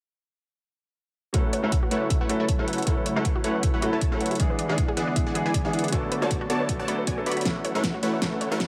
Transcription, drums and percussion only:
1.34 kick, closed hi-hat
1.53 closed hi-hat
1.72 kick, closed hi-hat
1.91 closed hi-hat
2.10 kick, closed hi-hat
2.29 closed hi-hat
2.49 kick, closed hi-hat
2.68 closed hi-hat
2.73 closed hi-hat
2.78 closed hi-hat
2.82 closed hi-hat
2.87 kick, closed hi-hat
3.06 closed hi-hat
3.25 kick, closed hi-hat
3.44 closed hi-hat
3.63 kick, closed hi-hat
3.82 closed hi-hat
4.01 kick, closed hi-hat
4.21 closed hi-hat
4.26 closed hi-hat
4.31 closed hi-hat
4.35 closed hi-hat
4.40 kick, closed hi-hat
4.59 closed hi-hat
4.78 kick, closed hi-hat
4.97 closed hi-hat
5.16 kick, closed hi-hat
5.35 closed hi-hat
5.54 kick, closed hi-hat
5.73 closed hi-hat
5.79 closed hi-hat
5.84 closed hi-hat
5.88 closed hi-hat
5.92 kick, closed hi-hat
6.12 closed hi-hat
6.31 kick, closed hi-hat
6.50 closed hi-hat
6.69 kick, closed hi-hat
6.88 closed hi-hat
7.07 kick, closed hi-hat
7.26 closed hi-hat
7.32 closed hi-hat
7.37 closed hi-hat
7.41 closed hi-hat
7.45 kick, snare, closed hi-hat
7.65 closed hi-hat
7.84 kick, snare, closed hi-hat
8.03 closed hi-hat
8.22 kick, snare, closed hi-hat
8.41 closed hi-hat
8.60 kick, snare, closed hi-hat

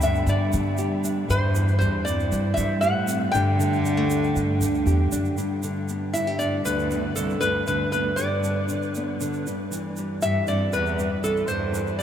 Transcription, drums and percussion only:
0.02 shaker
0.15 shaker
0.27 shaker
0.53 shaker
0.78 shaker
1.04 shaker
1.30 shaker
1.55 shaker
1.68 shaker
1.81 shaker
2.07 shaker
2.20 shaker
2.32 shaker
2.57 shaker
2.82 shaker
3.08 shaker
3.34 shaker
3.60 shaker
3.73 shaker
3.85 shaker
4.10 shaker
4.24 shaker
4.36 shaker
4.61 shaker
4.74 shaker
4.87 shaker
5.12 shaker
5.25 shaker
5.38 shaker
5.63 shaker
5.89 shaker
6.15 shaker
6.40 shaker
6.66 shaker
6.79 shaker
6.91 shaker
7.16 shaker
7.30 shaker
7.42 shaker
7.67 shaker
7.93 shaker
8.17 shaker
8.44 shaker
8.69 shaker
8.82 shaker
8.95 shaker
9.21 shaker
9.33 shaker
9.47 shaker
9.72 shaker
9.97 shaker
10.22 shaker
10.47 shaker
10.73 shaker
10.86 shaker
10.99 shaker
11.24 shaker
11.37 shaker
11.48 shaker
11.74 shaker
11.87 shaker

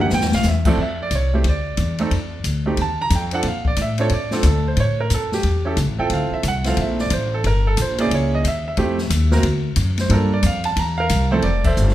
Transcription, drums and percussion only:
0.10 snare
0.21 snare
0.32 snare
0.43 snare, hi-hat pedal
0.65 kick, crash
0.78 kick
1.11 kick, hi-hat pedal, ride
1.44 kick, ride
1.77 kick, hi-hat pedal, ride
1.98 ride
2.11 kick, ride
2.44 kick, hi-hat pedal, ride
2.77 kick, ride
3.10 kick, hi-hat pedal, ride
3.31 ride
3.43 kick, ride
3.65 kick
3.76 kick, hi-hat pedal, ride
3.98 ride
4.09 kick, ride
4.31 snare
4.43 kick, hi-hat pedal, ride
4.77 kick, ride
5.10 kick, hi-hat pedal, ride
5.32 snare
5.43 kick, ride
5.77 kick, hi-hat pedal, ride
6.10 kick, ride
6.43 kick, hi-hat pedal, ride
6.64 snare, ride
6.77 kick, ride
6.98 snare
7.10 kick, hi-hat pedal, ride
7.44 kick, ride
7.77 kick, hi-hat pedal, ride
7.98 ride
8.11 kick, ride
8.44 kick, hi-hat pedal, ride
8.77 kick, ride
8.98 snare
9.10 kick, hi-hat pedal, ride
9.31 snare
9.43 kick, ride
9.76 kick, hi-hat pedal, ride
9.98 snare, ride
10.10 kick, ride
10.43 kick, hi-hat pedal, ride
10.64 ride
10.77 kick, ride
11.09 kick, hi-hat pedal, ride
11.42 kick, ride
11.64 kick, crash
11.77 hi-hat pedal
11.88 snare

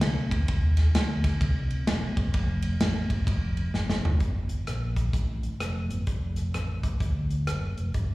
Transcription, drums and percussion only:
0.01 snare, ride bell
0.31 kick, ride bell
0.48 kick, ride bell
0.77 snare, ride bell
0.95 snare, ride bell
1.24 kick, snare, ride bell
1.41 kick, ride bell
1.71 ride bell
1.87 snare, ride bell
2.17 kick, ride bell
2.34 kick, ride bell
2.62 ride bell
2.80 snare, ride bell
3.10 kick, ride bell
3.27 kick, ride bell
3.57 ride bell
3.74 snare
3.89 snare
4.05 floor tom
4.20 kick, closed hi-hat
4.49 closed hi-hat
4.67 cross-stick, closed hi-hat
4.96 kick, cross-stick, closed hi-hat
5.13 kick, closed hi-hat
5.43 closed hi-hat
5.60 cross-stick, closed hi-hat
5.90 closed hi-hat
6.07 kick, closed hi-hat
6.36 cross-stick, closed hi-hat
6.54 cross-stick, closed hi-hat
6.83 kick, closed hi-hat
7.00 kick, closed hi-hat
7.30 closed hi-hat
7.47 cross-stick, closed hi-hat
7.78 closed hi-hat
7.94 kick, closed hi-hat

